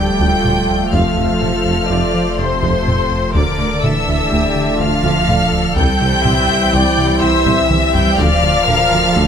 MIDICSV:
0, 0, Header, 1, 12, 480
1, 0, Start_track
1, 0, Key_signature, -1, "minor"
1, 0, Tempo, 483871
1, 923, Time_signature, 5, 2, 24, 8
1, 9201, End_track
2, 0, Start_track
2, 0, Title_t, "Violin section"
2, 0, Program_c, 0, 48
2, 0, Note_on_c, 0, 91, 97
2, 899, Note_off_c, 0, 91, 0
2, 922, Note_on_c, 0, 89, 83
2, 2362, Note_on_c, 0, 84, 88
2, 2363, Note_off_c, 0, 89, 0
2, 3317, Note_on_c, 0, 86, 93
2, 3322, Note_off_c, 0, 84, 0
2, 3790, Note_off_c, 0, 86, 0
2, 3802, Note_on_c, 0, 88, 95
2, 4762, Note_off_c, 0, 88, 0
2, 4763, Note_on_c, 0, 89, 102
2, 5704, Note_off_c, 0, 89, 0
2, 5721, Note_on_c, 0, 91, 117
2, 7133, Note_off_c, 0, 91, 0
2, 7155, Note_on_c, 0, 88, 109
2, 7879, Note_off_c, 0, 88, 0
2, 7883, Note_on_c, 0, 91, 103
2, 8118, Note_off_c, 0, 91, 0
2, 8125, Note_on_c, 0, 89, 127
2, 9201, Note_off_c, 0, 89, 0
2, 9201, End_track
3, 0, Start_track
3, 0, Title_t, "Violin section"
3, 0, Program_c, 1, 48
3, 0, Note_on_c, 1, 79, 88
3, 921, Note_off_c, 1, 79, 0
3, 928, Note_on_c, 1, 77, 68
3, 2337, Note_off_c, 1, 77, 0
3, 2371, Note_on_c, 1, 72, 82
3, 3308, Note_off_c, 1, 72, 0
3, 3320, Note_on_c, 1, 74, 75
3, 3792, Note_off_c, 1, 74, 0
3, 3805, Note_on_c, 1, 76, 81
3, 4764, Note_off_c, 1, 76, 0
3, 4764, Note_on_c, 1, 77, 95
3, 5717, Note_on_c, 1, 79, 94
3, 5723, Note_off_c, 1, 77, 0
3, 7131, Note_off_c, 1, 79, 0
3, 7159, Note_on_c, 1, 76, 96
3, 7877, Note_on_c, 1, 79, 91
3, 7881, Note_off_c, 1, 76, 0
3, 8115, Note_off_c, 1, 79, 0
3, 8120, Note_on_c, 1, 77, 109
3, 9201, Note_off_c, 1, 77, 0
3, 9201, End_track
4, 0, Start_track
4, 0, Title_t, "Viola section"
4, 0, Program_c, 2, 48
4, 0, Note_on_c, 2, 67, 64
4, 429, Note_off_c, 2, 67, 0
4, 434, Note_on_c, 2, 65, 66
4, 1379, Note_off_c, 2, 65, 0
4, 1396, Note_on_c, 2, 69, 66
4, 1879, Note_off_c, 2, 69, 0
4, 1881, Note_on_c, 2, 74, 75
4, 2362, Note_off_c, 2, 74, 0
4, 2362, Note_on_c, 2, 72, 65
4, 3319, Note_on_c, 2, 70, 73
4, 3322, Note_off_c, 2, 72, 0
4, 3798, Note_on_c, 2, 69, 65
4, 3801, Note_off_c, 2, 70, 0
4, 4280, Note_off_c, 2, 69, 0
4, 4280, Note_on_c, 2, 67, 73
4, 4752, Note_off_c, 2, 67, 0
4, 4760, Note_on_c, 2, 65, 70
4, 5241, Note_off_c, 2, 65, 0
4, 5241, Note_on_c, 2, 69, 80
4, 6192, Note_on_c, 2, 76, 81
4, 6202, Note_off_c, 2, 69, 0
4, 6673, Note_on_c, 2, 74, 90
4, 6678, Note_off_c, 2, 76, 0
4, 7155, Note_on_c, 2, 72, 86
4, 7158, Note_off_c, 2, 74, 0
4, 7629, Note_off_c, 2, 72, 0
4, 7636, Note_on_c, 2, 76, 86
4, 8110, Note_off_c, 2, 76, 0
4, 8118, Note_on_c, 2, 74, 98
4, 8591, Note_off_c, 2, 74, 0
4, 8598, Note_on_c, 2, 70, 93
4, 9075, Note_on_c, 2, 69, 77
4, 9080, Note_off_c, 2, 70, 0
4, 9201, Note_off_c, 2, 69, 0
4, 9201, End_track
5, 0, Start_track
5, 0, Title_t, "Analog synth pad"
5, 0, Program_c, 3, 89
5, 0, Note_on_c, 3, 53, 69
5, 0, Note_on_c, 3, 57, 68
5, 0, Note_on_c, 3, 69, 70
5, 0, Note_on_c, 3, 74, 69
5, 885, Note_off_c, 3, 74, 0
5, 928, Note_on_c, 3, 72, 76
5, 3284, Note_off_c, 3, 53, 0
5, 3285, Note_off_c, 3, 69, 0
5, 3286, Note_off_c, 3, 57, 0
5, 3323, Note_on_c, 3, 74, 77
5, 3323, Note_on_c, 3, 81, 77
5, 3324, Note_on_c, 3, 50, 79
5, 3325, Note_off_c, 3, 72, 0
5, 5683, Note_off_c, 3, 81, 0
5, 5684, Note_off_c, 3, 50, 0
5, 5722, Note_on_c, 3, 72, 80
5, 5723, Note_off_c, 3, 74, 0
5, 5724, Note_on_c, 3, 60, 83
5, 5725, Note_on_c, 3, 67, 82
5, 5727, Note_on_c, 3, 52, 80
5, 8116, Note_on_c, 3, 53, 88
5, 8116, Note_on_c, 3, 81, 80
5, 8117, Note_on_c, 3, 74, 80
5, 8119, Note_on_c, 3, 65, 80
5, 8122, Note_off_c, 3, 72, 0
5, 8124, Note_off_c, 3, 60, 0
5, 8124, Note_off_c, 3, 67, 0
5, 8125, Note_off_c, 3, 52, 0
5, 9201, Note_off_c, 3, 53, 0
5, 9201, Note_off_c, 3, 65, 0
5, 9201, Note_off_c, 3, 74, 0
5, 9201, Note_off_c, 3, 81, 0
5, 9201, End_track
6, 0, Start_track
6, 0, Title_t, "French horn section"
6, 0, Program_c, 4, 60
6, 0, Note_on_c, 4, 57, 68
6, 0, Note_on_c, 4, 65, 69
6, 3285, Note_off_c, 4, 65, 0
6, 3288, Note_off_c, 4, 57, 0
6, 3322, Note_on_c, 4, 57, 75
6, 3322, Note_on_c, 4, 62, 81
6, 5565, Note_off_c, 4, 57, 0
6, 5565, Note_off_c, 4, 62, 0
6, 5733, Note_on_c, 4, 64, 91
6, 5734, Note_on_c, 4, 55, 92
6, 8088, Note_off_c, 4, 64, 0
6, 8089, Note_off_c, 4, 55, 0
6, 8129, Note_on_c, 4, 53, 101
6, 8129, Note_on_c, 4, 65, 96
6, 9201, Note_off_c, 4, 53, 0
6, 9201, Note_off_c, 4, 65, 0
6, 9201, End_track
7, 0, Start_track
7, 0, Title_t, "Cello section"
7, 0, Program_c, 5, 48
7, 0, Note_on_c, 5, 55, 80
7, 922, Note_off_c, 5, 55, 0
7, 923, Note_on_c, 5, 53, 70
7, 2334, Note_off_c, 5, 53, 0
7, 2369, Note_on_c, 5, 48, 73
7, 3326, Note_off_c, 5, 48, 0
7, 3329, Note_on_c, 5, 50, 77
7, 3802, Note_on_c, 5, 52, 80
7, 3806, Note_off_c, 5, 50, 0
7, 4743, Note_off_c, 5, 52, 0
7, 4761, Note_on_c, 5, 53, 88
7, 5722, Note_off_c, 5, 53, 0
7, 5724, Note_on_c, 5, 55, 91
7, 7135, Note_off_c, 5, 55, 0
7, 7162, Note_on_c, 5, 52, 96
7, 7883, Note_off_c, 5, 52, 0
7, 7884, Note_on_c, 5, 55, 94
7, 8122, Note_on_c, 5, 53, 104
7, 8123, Note_off_c, 5, 55, 0
7, 9201, Note_off_c, 5, 53, 0
7, 9201, End_track
8, 0, Start_track
8, 0, Title_t, "Analog synth bass"
8, 0, Program_c, 6, 38
8, 0, Note_on_c, 6, 38, 65
8, 105, Note_off_c, 6, 38, 0
8, 200, Note_on_c, 6, 38, 86
8, 345, Note_off_c, 6, 38, 0
8, 444, Note_on_c, 6, 38, 64
8, 588, Note_off_c, 6, 38, 0
8, 684, Note_on_c, 6, 38, 62
8, 828, Note_off_c, 6, 38, 0
8, 920, Note_on_c, 6, 41, 90
8, 1065, Note_off_c, 6, 41, 0
8, 1157, Note_on_c, 6, 53, 61
8, 1303, Note_off_c, 6, 53, 0
8, 1403, Note_on_c, 6, 53, 67
8, 1547, Note_off_c, 6, 53, 0
8, 1641, Note_on_c, 6, 41, 58
8, 1786, Note_off_c, 6, 41, 0
8, 1879, Note_on_c, 6, 41, 95
8, 2024, Note_off_c, 6, 41, 0
8, 2126, Note_on_c, 6, 53, 66
8, 2269, Note_off_c, 6, 53, 0
8, 2368, Note_on_c, 6, 41, 68
8, 2511, Note_off_c, 6, 41, 0
8, 2605, Note_on_c, 6, 41, 92
8, 2748, Note_off_c, 6, 41, 0
8, 2847, Note_on_c, 6, 41, 66
8, 2990, Note_off_c, 6, 41, 0
8, 3084, Note_on_c, 6, 41, 66
8, 3227, Note_off_c, 6, 41, 0
8, 3324, Note_on_c, 6, 38, 95
8, 3467, Note_off_c, 6, 38, 0
8, 3563, Note_on_c, 6, 50, 64
8, 3707, Note_off_c, 6, 50, 0
8, 3806, Note_on_c, 6, 50, 65
8, 3949, Note_off_c, 6, 50, 0
8, 4044, Note_on_c, 6, 38, 63
8, 4188, Note_off_c, 6, 38, 0
8, 4285, Note_on_c, 6, 38, 98
8, 4428, Note_off_c, 6, 38, 0
8, 4521, Note_on_c, 6, 50, 69
8, 4665, Note_off_c, 6, 50, 0
8, 4757, Note_on_c, 6, 38, 72
8, 4903, Note_off_c, 6, 38, 0
8, 5002, Note_on_c, 6, 38, 97
8, 5146, Note_off_c, 6, 38, 0
8, 5245, Note_on_c, 6, 38, 68
8, 5389, Note_off_c, 6, 38, 0
8, 5481, Note_on_c, 6, 38, 66
8, 5625, Note_off_c, 6, 38, 0
8, 5722, Note_on_c, 6, 36, 99
8, 5866, Note_off_c, 6, 36, 0
8, 5963, Note_on_c, 6, 48, 68
8, 6107, Note_off_c, 6, 48, 0
8, 6201, Note_on_c, 6, 48, 67
8, 6345, Note_off_c, 6, 48, 0
8, 6445, Note_on_c, 6, 36, 70
8, 6588, Note_off_c, 6, 36, 0
8, 6684, Note_on_c, 6, 36, 103
8, 6828, Note_off_c, 6, 36, 0
8, 6922, Note_on_c, 6, 48, 72
8, 7066, Note_off_c, 6, 48, 0
8, 7161, Note_on_c, 6, 36, 76
8, 7305, Note_off_c, 6, 36, 0
8, 7399, Note_on_c, 6, 36, 95
8, 7544, Note_off_c, 6, 36, 0
8, 7639, Note_on_c, 6, 36, 75
8, 7784, Note_off_c, 6, 36, 0
8, 7881, Note_on_c, 6, 36, 71
8, 8026, Note_off_c, 6, 36, 0
8, 8115, Note_on_c, 6, 38, 98
8, 8261, Note_off_c, 6, 38, 0
8, 8360, Note_on_c, 6, 50, 73
8, 8505, Note_off_c, 6, 50, 0
8, 8602, Note_on_c, 6, 50, 75
8, 8746, Note_off_c, 6, 50, 0
8, 8843, Note_on_c, 6, 38, 70
8, 8987, Note_off_c, 6, 38, 0
8, 9085, Note_on_c, 6, 38, 110
8, 9201, Note_off_c, 6, 38, 0
8, 9201, End_track
9, 0, Start_track
9, 0, Title_t, "Double bass section"
9, 0, Program_c, 7, 48
9, 201, Note_on_c, 7, 38, 74
9, 280, Note_off_c, 7, 38, 0
9, 441, Note_on_c, 7, 38, 51
9, 520, Note_off_c, 7, 38, 0
9, 924, Note_on_c, 7, 41, 76
9, 1004, Note_off_c, 7, 41, 0
9, 1167, Note_on_c, 7, 41, 53
9, 1247, Note_off_c, 7, 41, 0
9, 1407, Note_on_c, 7, 41, 53
9, 1486, Note_off_c, 7, 41, 0
9, 1648, Note_on_c, 7, 41, 51
9, 1727, Note_off_c, 7, 41, 0
9, 1888, Note_on_c, 7, 41, 67
9, 1967, Note_off_c, 7, 41, 0
9, 2367, Note_on_c, 7, 41, 53
9, 2446, Note_off_c, 7, 41, 0
9, 2605, Note_on_c, 7, 41, 76
9, 2685, Note_off_c, 7, 41, 0
9, 2846, Note_on_c, 7, 41, 57
9, 2926, Note_off_c, 7, 41, 0
9, 3321, Note_on_c, 7, 38, 77
9, 3400, Note_off_c, 7, 38, 0
9, 3561, Note_on_c, 7, 38, 59
9, 3641, Note_off_c, 7, 38, 0
9, 3803, Note_on_c, 7, 38, 57
9, 3882, Note_off_c, 7, 38, 0
9, 4041, Note_on_c, 7, 38, 58
9, 4121, Note_off_c, 7, 38, 0
9, 4283, Note_on_c, 7, 38, 78
9, 4362, Note_off_c, 7, 38, 0
9, 4762, Note_on_c, 7, 38, 58
9, 4841, Note_off_c, 7, 38, 0
9, 5001, Note_on_c, 7, 38, 85
9, 5081, Note_off_c, 7, 38, 0
9, 5241, Note_on_c, 7, 38, 62
9, 5320, Note_off_c, 7, 38, 0
9, 5717, Note_on_c, 7, 36, 86
9, 5796, Note_off_c, 7, 36, 0
9, 5959, Note_on_c, 7, 36, 69
9, 6038, Note_off_c, 7, 36, 0
9, 6197, Note_on_c, 7, 36, 61
9, 6276, Note_off_c, 7, 36, 0
9, 6442, Note_on_c, 7, 36, 64
9, 6521, Note_off_c, 7, 36, 0
9, 6676, Note_on_c, 7, 36, 89
9, 6755, Note_off_c, 7, 36, 0
9, 7156, Note_on_c, 7, 36, 66
9, 7236, Note_off_c, 7, 36, 0
9, 7397, Note_on_c, 7, 36, 100
9, 7477, Note_off_c, 7, 36, 0
9, 7638, Note_on_c, 7, 36, 66
9, 7717, Note_off_c, 7, 36, 0
9, 8121, Note_on_c, 7, 38, 99
9, 8200, Note_off_c, 7, 38, 0
9, 8357, Note_on_c, 7, 38, 74
9, 8436, Note_off_c, 7, 38, 0
9, 8600, Note_on_c, 7, 38, 71
9, 8679, Note_off_c, 7, 38, 0
9, 8841, Note_on_c, 7, 38, 70
9, 8921, Note_off_c, 7, 38, 0
9, 9078, Note_on_c, 7, 38, 97
9, 9158, Note_off_c, 7, 38, 0
9, 9201, End_track
10, 0, Start_track
10, 0, Title_t, "Tuba"
10, 0, Program_c, 8, 58
10, 205, Note_on_c, 8, 38, 66
10, 300, Note_off_c, 8, 38, 0
10, 445, Note_on_c, 8, 38, 51
10, 540, Note_off_c, 8, 38, 0
10, 924, Note_on_c, 8, 29, 71
10, 1019, Note_off_c, 8, 29, 0
10, 1167, Note_on_c, 8, 29, 53
10, 1262, Note_off_c, 8, 29, 0
10, 1404, Note_on_c, 8, 29, 54
10, 1500, Note_off_c, 8, 29, 0
10, 1642, Note_on_c, 8, 29, 48
10, 1738, Note_off_c, 8, 29, 0
10, 1882, Note_on_c, 8, 29, 78
10, 1978, Note_off_c, 8, 29, 0
10, 2364, Note_on_c, 8, 29, 54
10, 2460, Note_off_c, 8, 29, 0
10, 2606, Note_on_c, 8, 29, 66
10, 2701, Note_off_c, 8, 29, 0
10, 2842, Note_on_c, 8, 29, 53
10, 2938, Note_off_c, 8, 29, 0
10, 3325, Note_on_c, 8, 38, 79
10, 3421, Note_off_c, 8, 38, 0
10, 3562, Note_on_c, 8, 38, 59
10, 3658, Note_off_c, 8, 38, 0
10, 3804, Note_on_c, 8, 38, 60
10, 3899, Note_off_c, 8, 38, 0
10, 4042, Note_on_c, 8, 38, 56
10, 4138, Note_off_c, 8, 38, 0
10, 4278, Note_on_c, 8, 38, 83
10, 4375, Note_off_c, 8, 38, 0
10, 4763, Note_on_c, 8, 38, 61
10, 4859, Note_off_c, 8, 38, 0
10, 5001, Note_on_c, 8, 38, 75
10, 5098, Note_off_c, 8, 38, 0
10, 5240, Note_on_c, 8, 38, 60
10, 5336, Note_off_c, 8, 38, 0
10, 5723, Note_on_c, 8, 36, 84
10, 5819, Note_off_c, 8, 36, 0
10, 5963, Note_on_c, 8, 36, 64
10, 6059, Note_off_c, 8, 36, 0
10, 6200, Note_on_c, 8, 36, 66
10, 6296, Note_off_c, 8, 36, 0
10, 6435, Note_on_c, 8, 36, 61
10, 6533, Note_off_c, 8, 36, 0
10, 6680, Note_on_c, 8, 36, 87
10, 6777, Note_off_c, 8, 36, 0
10, 7160, Note_on_c, 8, 36, 68
10, 7257, Note_off_c, 8, 36, 0
10, 7399, Note_on_c, 8, 36, 82
10, 7496, Note_off_c, 8, 36, 0
10, 7639, Note_on_c, 8, 36, 66
10, 7736, Note_off_c, 8, 36, 0
10, 8121, Note_on_c, 8, 38, 92
10, 8218, Note_off_c, 8, 38, 0
10, 8365, Note_on_c, 8, 38, 73
10, 8460, Note_off_c, 8, 38, 0
10, 8602, Note_on_c, 8, 38, 68
10, 8698, Note_off_c, 8, 38, 0
10, 8841, Note_on_c, 8, 38, 65
10, 8937, Note_off_c, 8, 38, 0
10, 9081, Note_on_c, 8, 38, 105
10, 9177, Note_off_c, 8, 38, 0
10, 9201, End_track
11, 0, Start_track
11, 0, Title_t, "Sub bass"
11, 0, Program_c, 10, 38
11, 0, Note_on_c, 10, 26, 68
11, 922, Note_on_c, 10, 29, 68
11, 937, Note_off_c, 10, 26, 0
11, 3322, Note_on_c, 10, 26, 69
11, 3337, Note_off_c, 10, 29, 0
11, 5719, Note_on_c, 10, 36, 72
11, 5734, Note_off_c, 10, 26, 0
11, 8121, Note_on_c, 10, 26, 79
11, 8136, Note_off_c, 10, 36, 0
11, 9201, Note_off_c, 10, 26, 0
11, 9201, End_track
12, 0, Start_track
12, 0, Title_t, "Taiko and cinematic ensemble drums"
12, 205, Note_on_c, 9, 41, 76
12, 304, Note_off_c, 9, 41, 0
12, 443, Note_on_c, 9, 45, 58
12, 542, Note_off_c, 9, 45, 0
12, 921, Note_on_c, 9, 41, 100
12, 1020, Note_off_c, 9, 41, 0
12, 1405, Note_on_c, 9, 45, 56
12, 1504, Note_off_c, 9, 45, 0
12, 2605, Note_on_c, 9, 41, 77
12, 2704, Note_off_c, 9, 41, 0
12, 2845, Note_on_c, 9, 45, 57
12, 2944, Note_off_c, 9, 45, 0
12, 3325, Note_on_c, 9, 41, 96
12, 3424, Note_off_c, 9, 41, 0
12, 3804, Note_on_c, 9, 45, 58
12, 3903, Note_off_c, 9, 45, 0
12, 5002, Note_on_c, 9, 41, 79
12, 5101, Note_off_c, 9, 41, 0
12, 5242, Note_on_c, 9, 45, 57
12, 5341, Note_off_c, 9, 45, 0
12, 5720, Note_on_c, 9, 41, 102
12, 5819, Note_off_c, 9, 41, 0
12, 6200, Note_on_c, 9, 45, 64
12, 6299, Note_off_c, 9, 45, 0
12, 7405, Note_on_c, 9, 45, 91
12, 7504, Note_off_c, 9, 45, 0
12, 7646, Note_on_c, 9, 47, 94
12, 7745, Note_off_c, 9, 47, 0
12, 7886, Note_on_c, 9, 43, 93
12, 7985, Note_off_c, 9, 43, 0
12, 8123, Note_on_c, 9, 41, 107
12, 8223, Note_off_c, 9, 41, 0
12, 8604, Note_on_c, 9, 45, 64
12, 8703, Note_off_c, 9, 45, 0
12, 9201, End_track
0, 0, End_of_file